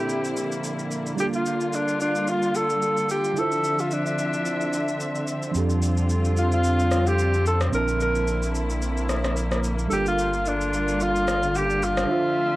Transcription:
Already playing: fm electric piano A#2 F3 C4 D4 E4 A4, string section D3 A#3 C4 E4, alto saxophone G4
0.09 shaker
0.24 shaker
0.37 shaker
0.52 shaker
0.64 shaker
0.79 shaker
0.91 shaker
1.06 shaker
1.15 fm electric piano G3 D4 F4, string section G3 F4, shaker
1.20 fm electric piano A#3 A4, alto saxophone G4
1.33 alto saxophone F4, shaker
1.46 shaker
1.61 shaker
1.73 alto saxophone D4, shaker
1.88 shaker
2.00 alto saxophone D4, shaker
2.15 shaker
2.27 alto saxophone F4, shaker
2.43 shaker
2.55 alto saxophone A4, shaker
2.70 shaker
2.82 shaker
2.97 shaker
3.09 alto saxophone G4, shaker
3.24 shaker
3.33 fm electric piano D3 D4 E4, string section F3 C4 E5, shaker
3.38 fm electric piano F4 C5, alto saxophone A4
3.52 shaker
3.64 shaker
3.79 alto saxophone F4, shaker
3.91 alto saxophone D4, shaker
4.06 shaker
4.18 shaker
4.33 shaker
4.46 shaker
4.61 shaker
4.73 shaker
4.88 shaker
5.00 shaker
5.15 shaker
5.28 shaker
5.43 shaker
5.51 sub bass F2, fm electric piano F3 C4 D4, string section G3 F4, shaker
5.57 fm electric piano G4 A4
5.70 shaker
5.82 shaker
5.97 shaker
6.09 shaker
6.25 shaker
6.37 alto saxophone F4, shaker
6.52 alto saxophone F4, shaker
6.64 shaker
6.79 shaker
6.91 cross-stick, shaker
7.07 alto saxophone G4, shaker
7.19 shaker
7.34 shaker
7.46 alto saxophone A4, shaker
7.61 cross-stick, shaker
7.70 sub bass A#1, fm electric piano A#2 F3 C4, string section A#3 E4, shaker
7.74 fm electric piano D4 E4 A5, alto saxophone A#4
7.88 shaker
8.00 alto saxophone A#4, shaker
8.15 shaker
8.27 shaker
8.43 shaker
8.55 shaker
8.70 shaker
8.82 shaker
8.97 shaker
9.09 cross-stick, shaker
9.24 cross-stick, shaker
9.37 shaker
9.52 cross-stick, shaker
9.64 shaker
9.79 shaker
9.88 sub bass G1, string section D3 G3 F4, fm electric piano G3 D4 F4, alto saxophone A4, shaker
9.93 alto saxophone G4, fm electric piano A4 A#4
10.06 alto saxophone F4, shaker
10.19 shaker
10.33 shaker
10.46 alto saxophone D4, shaker
10.61 shaker
10.73 shaker
10.88 shaker
11.00 alto saxophone F4, shaker
11.16 shaker
11.28 cross-stick, shaker
11.43 shaker
11.55 alto saxophone G4, shaker
11.70 shaker
11.82 alto saxophone F4, shaker
11.97 cross-stick, shaker
12.06 fm electric piano D3 D4 E5, string section F3 A3 C4 E5
12.12 fm electric piano F4 C5

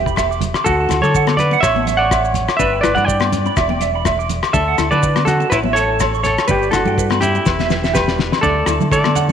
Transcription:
Already playing: fingered electric bass E1, trumpet G4, clean electric guitar G4 B4
0.06 clean electric guitar B5, kick, maracas
0.16 nylon-string guitar A3, clean electric guitar E5, kick, cross-stick, low agogo, maracas
0.31 clean electric guitar D6, maracas
0.41 closed hi-hat, high conga, low conga, maracas
0.54 clean electric guitar D6, cross-stick, low agogo, maracas
0.64 fingered electric bass D2, nylon-string guitar A3, clean electric guitar F#4 A4 F#5, trumpet F#4, kick, maracas
0.80 clean electric guitar A5
0.89 fingered electric bass D2, nylon-string guitar E4, cross-stick, closed hi-hat, low conga, low agogo, maracas
1.01 fingered electric bass D3, nylon-string guitar A3, trumpet A4, clean electric guitar A4 C#5 D6, high conga, maracas
1.15 clean electric guitar F#5, kick, maracas
1.27 nylon-string guitar B3, clean electric guitar D6, cross-stick, low agogo, maracas
1.37 nylon-string guitar C#4, trumpet B4, clean electric guitar B4 D5, closed hi-hat, high conga, low conga, maracas
1.51 nylon-string guitar C#4, clean electric guitar F#5, maracas
1.61 fingered electric bass A1, trumpet C#5, clean electric guitar C#5 E5, kick, cross-stick, low agogo, maracas
1.75 nylon-string guitar B3, clean electric guitar A5, high conga
1.87 clean electric guitar E5, closed hi-hat, high conga, maracas
1.97 trumpet C#5, clean electric guitar D5 F#5 C#6
2.11 nylon-string guitar A3, clean electric guitar E5, kick, cross-stick, low agogo, maracas
2.25 muted clean electric guitar stroke, maracas
2.34 closed hi-hat, high conga, low conga, maracas
2.48 clean electric guitar D6, cross-stick, low agogo, maracas
2.57 fingered electric bass G1, nylon-string guitar D4, clean electric guitar B4 D5 E5, trumpet B4, kick, maracas
2.73 clean electric guitar G5
2.81 nylon-string guitar E4, clean electric guitar B4 D5, trumpet B4, cross-stick, closed hi-hat, low agogo, maracas
2.85 fingered electric bass G1
2.95 fingered electric bass G2, nylon-string guitar A3, clean electric guitar D5 F#5 B5, high conga, maracas
2.99 trumpet D5
3.05 clean electric guitar D5 G5, kick
3.09 trumpet D5, maracas
3.20 nylon-string guitar B3, clean electric guitar D6, cross-stick, low agogo
3.32 nylon-string guitar C#4, closed hi-hat, high conga, low conga, maracas
3.46 nylon-string guitar C#4, clean electric guitar B5, maracas
3.57 fingered electric bass E1, clean electric guitar E5, kick, cross-stick, low agogo, maracas
3.69 nylon-string guitar B3, clean electric guitar G5, high conga
3.81 clean electric guitar E5, closed hi-hat, high conga, maracas
3.96 clean electric guitar B5
4.05 nylon-string guitar A3, clean electric guitar E5, kick, cross-stick, low agogo, maracas
4.19 clean electric guitar D6, maracas
4.29 closed hi-hat, high conga, low conga, maracas
4.43 clean electric guitar D6, cross-stick, low agogo, maracas
4.53 fingered electric bass D2, nylon-string guitar D4, clean electric guitar A4 D5 E5, trumpet A4, kick, maracas
4.68 clean electric guitar F#5
4.78 fingered electric bass D2, nylon-string guitar E4, cross-stick, closed hi-hat, low conga, low agogo, maracas
4.90 fingered electric bass D3, nylon-string guitar A3, trumpet B4, clean electric guitar B4 D5 A5, high conga, maracas
5.03 clean electric guitar D5, kick, maracas
5.16 nylon-string guitar B3, clean electric guitar D6, cross-stick, low agogo, maracas
5.25 nylon-string guitar C#4, trumpet F#4, clean electric guitar F#4 A4, closed hi-hat, high conga, low conga, maracas
5.40 nylon-string guitar C#4, clean electric guitar A5, maracas
5.50 fingered electric bass A1, trumpet E4, clean electric guitar E4 B4 C#5, kick, cross-stick, low agogo, maracas
5.63 nylon-string guitar B3, clean electric guitar E5, high conga
5.73 clean electric guitar A4 C#5, trumpet A4, closed hi-hat, maracas
5.89 clean electric guitar A5
6.00 nylon-string guitar A3, clean electric guitar C#5, kick, cross-stick, low agogo, maracas
6.14 clean electric guitar C#6, maracas
6.23 trumpet A4, clean electric guitar A4 C#5, closed hi-hat, low conga, maracas
6.38 clean electric guitar C#6, cross-stick, low agogo, maracas
6.48 fingered electric bass G1, trumpet G4, clean electric guitar G4 B4 D5, muted nylon-string guitar stroke, kick, low conga, maracas
6.62 clean electric guitar D5, maracas
6.71 fingered electric bass G1, trumpet D4, nylon-string guitar E4, clean electric guitar F#4 A4, cross-stick, closed hi-hat, low conga, low agogo, maracas
6.85 fingered electric bass G2, nylon-string guitar A3, clean electric guitar G5, high conga, maracas
6.98 clean electric guitar B4, kick, maracas
7.10 nylon-string guitar B3, clean electric guitar B5, cross-stick, low agogo, maracas
7.21 nylon-string guitar C#4, trumpet E4, clean electric guitar E4 G4, closed hi-hat, low conga, maracas
7.35 nylon-string guitar C#4, clean electric guitar G5, maracas
7.46 fingered electric bass E1, clean electric guitar B4, kick, snare, low agogo, maracas
7.59 nylon-string guitar B3, clean electric guitar E5, snare, high conga, maracas
7.70 clean electric guitar B4, snare, high conga, maracas
7.84 clean electric guitar E5, snare, maracas
7.94 trumpet G3, nylon-string guitar A3, clean electric guitar G4 B4, kick, snare, low agogo, maracas
8.08 clean electric guitar B5, snare, maracas
8.19 snare, high conga, low conga
8.32 clean electric guitar B5, snare, low agogo, maracas
8.41 fingered electric bass D2, nylon-string guitar D4, clean electric guitar A4 D5, kick, maracas
8.46 trumpet A3
8.66 fingered electric bass D2, nylon-string guitar E4, clean electric guitar A5, cross-stick, closed hi-hat, low agogo, maracas
8.80 fingered electric bass D3, nylon-string guitar A3, high conga, maracas
8.91 trumpet A3, clean electric guitar A4 D5, kick, maracas
9.04 nylon-string guitar B3, cross-stick, low agogo
9.15 nylon-string guitar C#4, clean electric guitar F#5, closed hi-hat, low conga, maracas
9.29 high conga

